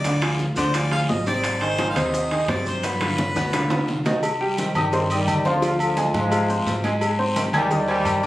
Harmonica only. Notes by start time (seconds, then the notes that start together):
Already playing: D5
0.58 C5
0.75 D5
0.92 F5
1.10 D#5
1.28 D5
1.62 C5
1.90 F5
1.97 D#5
2.50 D5
2.68 C5
2.85 B4